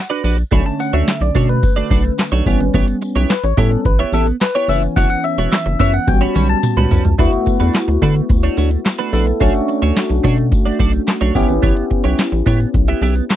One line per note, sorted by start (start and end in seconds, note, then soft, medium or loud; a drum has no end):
0.10 0.23 D4 medium
0.10 0.23 F#4 medium
0.10 0.23 B4 medium
0.10 0.23 D5 medium
0.10 closed hi-hat medium
0.24 0.44 A#1 loud
0.24 0.41 D4 medium
0.24 0.37 F#4 medium
0.24 0.37 B4 medium
0.24 0.36 D5 medium
0.24 closed hi-hat medium
0.24 tambourine medium
0.38 muted clean electric guitar stroke soft
0.38 closed hi-hat medium
0.51 0.62 B1 loud
0.51 2.42 D3 medium
0.51 0.73 A3 loud
0.51 2.43 A3 medium
0.51 2.43 C#4 medium
0.51 0.65 D4 medium
0.51 0.65 F#4 loud
0.51 0.64 C#5 loud
0.51 0.67 B5 loud
0.51 kick loud
0.51 closed hi-hat medium
0.51 tambourine medium
0.66 0.80 A5 loud
0.66 muted clean electric guitar stroke soft
0.66 closed hi-hat medium
0.79 0.94 F#5 loud
0.79 muted clean electric guitar stroke medium
0.79 closed hi-hat medium
0.79 tambourine soft
0.93 1.03 D2 medium
0.93 1.11 A3 medium
0.93 1.11 D4 medium
0.93 1.11 F#4 medium
0.93 1.10 C#5 medium
0.93 1.22 E5 medium
0.93 closed hi-hat medium
1.08 snare loud
1.08 clap medium
1.08 closed hi-hat medium
1.08 tambourine medium
1.21 1.31 B1 medium
1.21 1.50 D5 medium
1.21 muted clean electric guitar stroke soft
1.21 closed hi-hat medium
1.35 1.64 B2 medium
1.35 1.57 A3 medium
1.35 1.49 D4 medium
1.35 1.48 F#4 medium
1.35 1.48 C#5 medium
1.35 kick medium
1.35 open hi-hat medium
1.35 tambourine soft
1.49 2.84 B4 medium
1.49 muted clean electric guitar stroke soft
1.49 closed hi-hat soft
1.63 muted clean electric guitar stroke soft
1.63 kick loud
1.63 closed hi-hat loud
1.63 tambourine soft
1.76 1.89 A3 medium
1.76 1.89 D4 medium
1.76 1.90 F#4 medium
1.76 1.90 D5 medium
1.76 closed hi-hat medium
1.90 2.10 B1 medium
1.90 2.12 A3 medium
1.90 2.04 D4 medium
1.90 2.04 F#4 medium
1.90 2.04 D5 loud
1.90 kick loud
1.90 closed hi-hat medium
1.90 tambourine medium
2.04 muted clean electric guitar stroke medium
2.04 closed hi-hat medium
2.18 muted clean electric guitar stroke soft
2.18 snare loud
2.18 clap medium
2.18 closed hi-hat loud
2.18 tambourine loud
2.32 2.42 B1 loud
2.32 2.46 A3 medium
2.32 2.46 D4 medium
2.32 2.46 F#4 medium
2.32 2.46 C#5 loud
2.32 closed hi-hat medium
2.46 2.56 A1 loud
2.46 3.25 G3 medium
2.46 2.63 B3 medium
2.46 3.26 B3 medium
2.46 3.26 C#4 medium
2.46 2.60 E4 medium
2.46 2.60 G4 medium
2.46 2.59 C#5 medium
2.46 kick loud
2.46 closed hi-hat medium
2.46 tambourine medium
2.60 2.70 G#1 medium
2.60 muted clean electric guitar stroke soft
2.60 closed hi-hat medium
2.74 2.84 A1 loud
2.74 2.96 B3 medium
2.74 2.87 E4 medium
2.74 2.87 G4 medium
2.74 2.87 C#5 medium
2.74 kick loud
2.74 closed hi-hat medium
2.74 tambourine medium
2.88 muted clean electric guitar stroke soft
2.88 closed hi-hat medium
3.01 muted clean electric guitar stroke soft
3.01 closed hi-hat medium
3.01 tambourine soft
3.16 3.26 B1 loud
3.16 3.33 B3 medium
3.16 3.33 E4 medium
3.16 3.33 G4 medium
3.16 3.33 C#5 medium
3.16 closed hi-hat medium
3.30 3.44 B4 medium
3.30 snare loud
3.30 clap medium
3.30 closed hi-hat medium
3.30 tambourine medium
3.44 3.53 A1 loud
3.44 3.57 C#5 medium
3.44 muted clean electric guitar stroke soft
3.44 closed hi-hat medium
3.57 3.77 A2 loud
3.57 3.82 G3 medium
3.57 3.79 B3 medium
3.57 3.83 B3 soft
3.57 3.83 C#4 medium
3.57 3.71 E4 medium
3.57 3.71 G4 loud
3.57 3.84 A4 medium
3.57 3.70 C#5 medium
3.57 kick medium
3.57 open hi-hat medium
3.57 tambourine medium
3.71 muted clean electric guitar stroke medium
3.71 closed hi-hat soft
3.85 4.05 A1 loud
3.85 4.00 B4 medium
3.85 muted clean electric guitar stroke soft
3.85 kick loud
3.85 closed hi-hat loud
3.99 4.12 B3 medium
3.99 4.12 E4 medium
3.99 4.13 G4 medium
3.99 4.12 C#5 medium
3.99 4.13 E5 medium
3.99 closed hi-hat medium
4.13 4.32 A1 loud
4.13 4.35 B3 medium
4.13 4.27 E4 medium
4.13 4.26 G4 medium
4.13 4.26 A4 medium
4.13 4.27 E5 loud
4.13 closed hi-hat medium
4.13 tambourine medium
4.27 muted clean electric guitar stroke soft
4.27 closed hi-hat medium
4.41 4.54 B4 medium
4.41 muted clean electric guitar stroke soft
4.41 snare loud
4.41 clap medium
4.41 closed hi-hat loud
4.41 tambourine loud
4.55 4.67 B3 medium
4.55 4.68 E4 medium
4.55 4.69 G4 medium
4.55 4.69 C#5 medium
4.55 4.68 C#5 medium
4.55 closed hi-hat medium
4.68 4.88 F#1 loud
4.68 6.03 E3 medium
4.68 4.86 B3 medium
4.68 6.04 B3 medium
4.68 6.04 C#4 medium
4.68 4.82 E4 medium
4.68 4.82 F#4 medium
4.68 4.82 C#5 medium
4.68 4.81 E5 medium
4.68 closed hi-hat medium
4.68 tambourine medium
4.83 muted clean electric guitar stroke soft
4.83 closed hi-hat medium
4.96 5.06 F#1 loud
4.96 5.18 B3 medium
4.96 5.10 E4 medium
4.96 5.10 F#4 medium
4.96 5.09 C#5 loud
4.96 5.09 F#5 loud
4.96 kick loud
4.96 closed hi-hat medium
4.96 tambourine medium
5.10 5.23 F#5 medium
5.10 muted clean electric guitar stroke soft
5.10 closed hi-hat soft
5.24 5.50 E5 loud
5.24 muted clean electric guitar stroke soft
5.24 closed hi-hat medium
5.38 5.48 E1 medium
5.38 5.56 B3 medium
5.38 5.56 E4 medium
5.38 5.55 F#4 medium
5.38 5.55 C#5 medium
5.38 closed hi-hat medium
5.52 5.78 E5 medium
5.52 snare loud
5.52 clap loud
5.52 closed hi-hat medium
5.52 tambourine medium
5.66 5.76 F#1 loud
5.66 muted clean electric guitar stroke medium
5.66 closed hi-hat medium
5.79 5.99 F#2 medium
5.79 6.01 B3 medium
5.79 5.93 E4 medium
5.79 5.93 F#4 medium
5.79 5.92 C#5 loud
5.79 5.94 E5 loud
5.79 kick medium
5.79 open hi-hat medium
5.79 tambourine medium
5.94 6.08 F#5 loud
5.94 muted clean electric guitar stroke soft
5.94 closed hi-hat soft
6.07 6.27 A1 loud
6.07 7.14 G3 medium
6.07 7.15 B3 medium
6.07 7.15 C#4 soft
6.07 7.15 F#4 medium
6.07 6.21 G5 loud
6.07 muted clean electric guitar stroke soft
6.07 kick loud
6.07 closed hi-hat loud
6.07 high tom medium
6.07 tambourine soft
6.21 6.34 G3 medium
6.21 6.34 C#4 medium
6.21 6.34 F#4 medium
6.21 6.35 C#5 medium
6.21 6.47 B5 loud
6.21 closed hi-hat medium
6.35 6.55 B1 medium
6.35 6.57 G3 medium
6.35 6.49 C#4 loud
6.35 6.48 F#4 medium
6.35 6.49 C#5 loud
6.35 closed hi-hat medium
6.35 mid tom medium
6.35 tambourine medium
6.49 7.15 A5 loud
6.49 muted clean electric guitar stroke soft
6.49 closed hi-hat medium
6.63 muted clean electric guitar stroke soft
6.63 closed hi-hat medium
6.63 mid tom medium
6.63 tambourine loud
6.77 6.87 C#2 medium
6.77 6.90 G3 medium
6.77 6.90 C#4 medium
6.77 6.90 F#4 medium
6.77 6.91 B4 medium
6.77 closed hi-hat medium
6.77 mid tom medium
6.91 7.01 C2 loud
6.91 7.08 G3 medium
6.91 7.04 C#4 medium
6.91 7.04 F#4 medium
6.91 7.04 B4 medium
6.91 closed hi-hat medium
6.91 floor tom loud
6.91 tambourine medium
7.05 7.15 C#2 medium
7.05 muted clean electric guitar stroke soft
7.05 closed hi-hat medium
7.05 floor tom medium
7.18 7.28 D2 loud
7.18 9.09 A3 medium
7.18 7.40 A3 medium
7.18 9.09 B3 medium
7.18 7.32 D4 medium
7.18 9.10 E4 medium
7.18 7.32 F#4 medium
7.18 9.10 F#4 medium
7.18 7.31 B4 medium
7.18 kick loud
7.18 closed hi-hat medium
7.18 tambourine medium
7.32 muted clean electric guitar stroke soft
7.32 closed hi-hat soft
7.46 muted clean electric guitar stroke soft
7.46 kick medium
7.46 closed hi-hat medium
7.46 tambourine soft
7.60 7.70 E2 medium
7.60 7.78 A3 medium
7.60 7.78 D4 medium
7.60 7.77 F#4 medium
7.60 7.77 B4 medium
7.60 closed hi-hat medium
7.74 snare loud
7.74 clap medium
7.74 closed hi-hat medium
7.74 tambourine medium
7.88 7.98 D2 medium
7.88 muted clean electric guitar stroke soft
7.88 closed hi-hat soft
8.02 8.21 D3 loud
8.02 8.24 A3 medium
8.02 8.15 D4 medium
8.02 8.15 F#4 medium
8.02 8.14 B4 medium
8.02 kick medium
8.02 closed hi-hat medium
8.02 tambourine soft
8.16 muted clean electric guitar stroke soft
8.16 closed hi-hat soft
8.29 8.49 D2 medium
8.29 muted clean electric guitar stroke soft
8.29 kick loud
8.29 closed hi-hat medium
8.29 tambourine soft
8.43 8.56 A3 medium
8.43 8.56 D4 medium
8.43 8.57 F#4 medium
8.43 8.57 C#5 medium
8.43 closed hi-hat medium
8.57 8.77 D2 medium
8.57 8.79 A3 medium
8.57 8.71 D4 loud
8.57 8.70 F#4 medium
8.57 8.71 C#5 medium
8.57 closed hi-hat medium
8.57 tambourine medium
8.71 muted clean electric guitar stroke soft
8.71 closed hi-hat medium
8.85 muted clean electric guitar stroke soft
8.85 snare loud
8.85 clap medium
8.85 closed hi-hat loud
8.85 tambourine loud
8.99 9.11 A3 medium
8.99 9.12 D4 medium
8.99 9.12 F#4 medium
8.99 9.12 B4 medium
8.99 closed hi-hat medium
9.13 9.33 A#1 loud
9.13 9.30 A3 medium
9.13 9.39 A3 medium
9.13 9.41 B3 medium
9.13 9.26 D4 medium
9.13 9.41 E4 medium
9.13 9.26 F#4 medium
9.13 9.41 A4 medium
9.13 9.26 B4 medium
9.13 closed hi-hat medium
9.13 tambourine medium
9.27 muted clean electric guitar stroke soft
9.27 closed hi-hat medium
9.40 9.51 B1 loud
9.40 11.31 A3 medium
9.40 9.62 A3 medium
9.40 11.31 C#4 medium
9.40 9.54 D4 medium
9.40 11.32 D4 medium
9.40 9.54 F#4 medium
9.40 11.32 F#4 medium
9.40 9.53 C#5 medium
9.40 kick loud
9.40 closed hi-hat medium
9.40 tambourine medium
9.54 muted clean electric guitar stroke soft
9.54 closed hi-hat soft
9.68 muted clean electric guitar stroke soft
9.68 closed hi-hat medium
9.68 tambourine soft
9.82 9.92 D2 medium
9.82 10.00 A3 medium
9.82 10.00 D4 medium
9.82 10.00 F#4 medium
9.82 9.99 C#5 medium
9.82 closed hi-hat medium
9.96 snare loud
9.96 clap medium
9.96 closed hi-hat medium
9.96 tambourine medium
10.10 10.20 B1 medium
10.10 muted clean electric guitar stroke soft
10.10 closed hi-hat soft
10.24 10.53 B2 medium
10.24 10.46 A3 medium
10.24 10.38 D4 medium
10.24 10.37 F#4 medium
10.24 10.37 C#5 medium
10.24 kick medium
10.24 closed hi-hat medium
10.24 tambourine soft
10.38 muted clean electric guitar stroke soft
10.38 closed hi-hat soft
10.52 muted clean electric guitar stroke soft
10.52 kick loud
10.52 closed hi-hat loud
10.52 tambourine soft
10.66 10.78 A3 medium
10.66 10.78 D4 medium
10.66 10.79 F#4 medium
10.66 10.79 D5 medium
10.66 closed hi-hat medium
10.79 10.99 B1 medium
10.79 11.01 A3 medium
10.79 10.93 D4 medium
10.79 10.92 F#4 loud
10.79 10.93 D5 loud
10.79 kick loud
10.79 closed hi-hat medium
10.79 tambourine medium
10.93 muted clean electric guitar stroke soft
10.93 closed hi-hat medium
11.07 muted clean electric guitar stroke soft
11.07 snare loud
11.07 clap medium
11.07 closed hi-hat medium
11.07 tambourine loud
11.21 11.31 B1 loud
11.21 11.34 A3 medium
11.21 11.35 D4 medium
11.21 11.35 F#4 medium
11.21 11.35 C#5 medium
11.21 closed hi-hat soft
11.35 11.45 A1 medium
11.35 11.52 B3 medium
11.35 13.36 B3 medium
11.35 13.36 C#4 medium
11.35 11.48 E4 medium
11.35 13.36 E4 medium
11.35 11.48 G4 medium
11.35 13.36 G4 medium
11.35 11.47 C#5 medium
11.35 kick medium
11.35 closed hi-hat medium
11.35 tambourine medium
11.49 11.59 G#1 loud
11.49 muted clean electric guitar stroke soft
11.49 closed hi-hat medium
11.62 11.73 A1 loud
11.62 11.85 B3 medium
11.62 11.76 E4 medium
11.62 11.75 G4 medium
11.62 11.75 C#5 medium
11.62 kick loud
11.62 closed hi-hat medium
11.62 tambourine medium
11.76 muted clean electric guitar stroke soft
11.76 closed hi-hat medium
11.90 muted clean electric guitar stroke soft
11.90 kick medium
11.90 closed hi-hat medium
12.04 12.14 B1 medium
12.04 12.22 B3 medium
12.04 12.22 E4 medium
12.04 12.22 G4 medium
12.04 12.21 C#5 medium
12.04 closed hi-hat medium
12.19 snare loud
12.19 clap medium
12.19 closed hi-hat medium
12.19 tambourine medium
12.32 12.42 A1 loud
12.32 muted clean electric guitar stroke soft
12.32 closed hi-hat medium
12.46 12.66 A2 loud
12.46 12.68 B3 medium
12.46 12.60 E4 medium
12.46 12.59 G4 medium
12.46 12.59 C#5 medium
12.46 kick medium
12.46 closed hi-hat medium
12.46 tambourine soft
12.60 muted clean electric guitar stroke soft
12.60 closed hi-hat soft
12.74 12.94 B1 medium
12.74 muted clean electric guitar stroke soft
12.74 kick loud
12.74 closed hi-hat loud
12.88 13.01 B3 soft
12.88 13.01 E4 medium
12.88 13.01 G4 medium
12.88 13.02 E5 medium
12.88 closed hi-hat medium
13.02 13.21 B1 loud
13.02 13.24 B3 medium
13.02 13.15 E4 medium
13.02 13.15 G4 loud
13.02 13.15 E5 medium
13.02 closed hi-hat medium
13.02 tambourine medium
13.16 muted clean electric guitar stroke soft
13.16 closed hi-hat medium
13.30 muted clean electric guitar stroke soft
13.30 snare loud
13.30 clap medium
13.30 closed hi-hat medium
13.30 tambourine medium